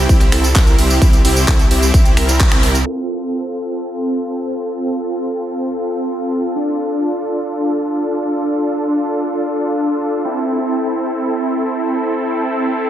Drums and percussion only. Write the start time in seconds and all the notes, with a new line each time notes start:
0.09 kick, closed hi-hat, tambourine
0.21 clap, closed hi-hat, tambourine
0.32 finger snap, open hi-hat
0.44 closed hi-hat, tambourine
0.55 kick, clap, closed hi-hat, tambourine
0.67 closed hi-hat, tambourine
0.79 open hi-hat
0.90 closed hi-hat, tambourine
1.02 kick, closed hi-hat, tambourine
1.13 closed hi-hat, tambourine
1.25 open hi-hat
1.36 closed hi-hat, tambourine
1.48 kick, clap, closed hi-hat
1.59 closed hi-hat, tambourine
1.71 open hi-hat
1.82 closed hi-hat, tambourine
1.94 kick, closed hi-hat, tambourine
2.06 closed hi-hat, tambourine
2.17 finger snap, open hi-hat
2.29 clap, closed hi-hat, tambourine
2.40 kick, clap, closed hi-hat, tambourine
2.52 finger snap, closed hi-hat, tambourine
2.63 open hi-hat
2.75 closed hi-hat, tambourine